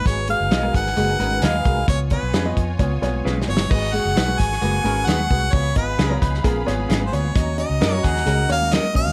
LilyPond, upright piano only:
\new Staff \with { instrumentName = "Upright piano" } { \time 4/4 \key gis \dorian \tempo 4 = 132 <gis fis' b'>16 r16 <gis fis' gis'>8 r16 <gis fis' ais'>8 r16 <gis fis' gis'>16 r16 <gis fis' b'>8. r16 <gis fis' ais'>16 r16 | <b eis' cis''>16 r16 <b eis' cis''>8 r16 <b eis' dis''>8 r16 <b eis' cis''>16 r16 <b eis' cis''>8. r16 <b eis' cis''>16 r16 | <gis fis' b'>16 r16 <gis fis' gis'>8 r16 <gis fis' b'>8 r16 <gis fis' b'>16 r16 <gis fis' b'>8. r16 <gis fis' b'>16 r16 | <b eis' cis''>16 r16 <b eis' dis''>8 r16 <b eis' cis''>8 r16 <b eis' gis'>16 r16 <b eis' cis''>8. r16 <b eis' cis''>16 r16 |
<cis' fis' dis''>16 r16 <cis' fis' dis''>8 r16 <cis' fis' dis''>8 r16 <cis' fis' gis'>16 r16 <cis' fis' cis''>8. r16 <cis' fis' dis''>16 r16 | }